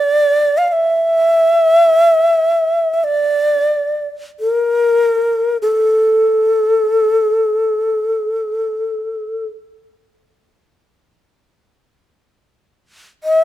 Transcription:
Already playing: D5
0.58 F5
0.68 F5
0.72 E5
2.94 E5
3.04 D5
4.40 A#4
5.62 A4
13.24 D#5
13.35 E5

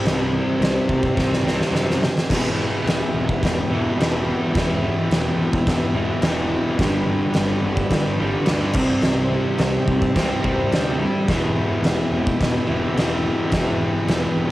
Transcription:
Already playing: C3 G3 C4 E4 G4 C5
0.04 C2, snare, crash
0.60 C2, snare, crash
0.89 C2, kick
1.03 kick
1.15 C2 C3 G3, kick, snare
1.20 C4
1.34 snare
1.42 C2 C4
1.47 C3 G3, snare
1.61 snare
1.72 F#2, snare
1.90 snare
2.03 snare
2.18 snare
2.29 E1 E2 B2 E4 G4 B4, kick, snare, crash
2.34 E3
2.85 E1, snare, crash
3.14 E1
3.29 kick
3.43 E1, kick, snare, crash
3.70 E1 B2 E3
3.75 E2
3.98 E1 E2 B2, snare, crash
4.03 E3
4.53 E1 E2 B2, kick, snare, crash
4.58 E3
5.10 E1, snare, crash
5.36 E1
5.53 kick
5.67 E1, kick, snare, crash
5.93 E1 B2 E3
6.00 E2
6.21 E1 E2 B2, snare, crash
6.27 E3
6.77 G1 G2 D3 D4 G4 B4, kick, snare, crash
6.82 G3
7.33 G1, snare, crash
7.64 G1
7.77 kick
7.90 G1, kick, snare, crash
8.18 G1 D3 G3
8.23 G2
8.46 D2 G2 D3, snare, crash
8.51 G3
8.72 C2 C3 E4 G4, kick, crash
8.76 G3 C4 C5
9.02 C2, snare, crash
9.58 C2, snare, crash
9.88 C2, kick
10.02 kick
10.15 C2 C3 G3, kick, snare, crash
10.20 C4
10.43 C2 G3 C4, kick
10.48 C3
10.72 D2, snare, crash
10.77 G5
11.03 E5
11.27 E1 E2 B2, kick, snare, crash
11.32 E3 E4 G4
11.36 B4
11.83 E1, snare, crash
12.11 E1
12.27 kick
12.41 E1, kick, snare, crash
12.66 E1 B2 E3
12.71 E2
12.95 E1 E2 B2, snare, crash
12.99 E3
13.51 E1 E2 B2, kick, snare, crash
13.56 E3
14.08 E1, snare, crash
14.37 E1

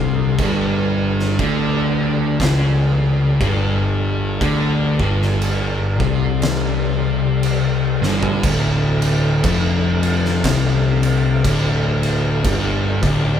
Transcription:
Already playing: C2 C3 D3 F4 A4
0.37 G1 G2 G3 A4 D5, kick, crash
1.20 snare
1.39 D2 D3, kick, crash
2.40 C#2 C#3, kick, snare, crash
3.40 G1 G2, kick, crash
4.41 D2 D3, kick, crash
4.99 G1 G2, kick
5.22 snare
5.42 crash
6.00 C2 C3, kick
6.42 snare, crash
7.43 crash
8.01 G1 G2, snare
8.23 floor tom
8.43 D1 D2 D3 A3 E4, kick, crash
9.02 crash
9.44 F1 F2, kick, crash
10.03 crash
10.25 snare
10.44 C2 C3, kick, snare, crash
11.03 crash
11.44 D1 D2, kick, crash
12.03 crash
12.44 G1 G2 G3, kick, crash
13.03 D1 D2, kick, crash

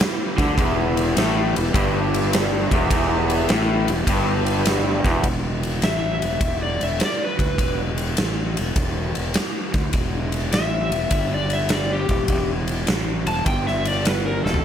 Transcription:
Already playing: B3 E4 G4
0.01 snare
0.38 D2 D3, kick, snare, ride
0.58 E1 E2 B3 G4 E5, kick, ride
0.97 ride
1.16 A1 A2, snare, ride
1.55 E1 E2, ride
1.74 G1 G2, kick, ride
2.14 ride
2.33 snare, ride
2.71 E1 E2, kick, ride
2.91 E1 E2 B3 G4 E5, kick, ride
3.30 ride
3.49 A1 A2, snare, ride
3.88 E1 E2, ride
4.07 G1 G2, kick, ride
4.46 ride
4.65 snare, ride
5.04 E1 E2, kick, snare, ride
5.24 E1, kick, ride
5.63 ride
5.82 A1 E5, snare, ride
6.22 E1, ride
6.41 E1, kick, ride
6.63 D5
6.81 E1 E5, ride
7.00 D5, snare, ride
7.24 B4
7.39 D2, kick, ride
7.58 E1, kick, ride
7.98 ride
8.17 A1, snare, ride
8.57 E1, ride
8.76 E1, kick, ride
9.15 E1, ride
9.34 snare, ride
9.74 D2, kick, ride
9.93 E1, kick, ride
10.32 ride
10.53 A1 E5, snare, ride
10.92 E1, ride
11.11 G1, kick, ride
11.34 D5
11.50 E5, ride
11.69 D5, snare, ride
11.93 G4
12.09 E1, kick, ride
12.28 E1, kick, ride
12.68 ride
12.87 A1, snare, ride
13.27 E1 A5, ride
13.46 G1 G5, kick, ride
13.67 E5, snare
13.85 D5, ride
14.05 B4, snare, ride
14.26 A#4
14.45 E1 A4, snare
14.54 floor tom

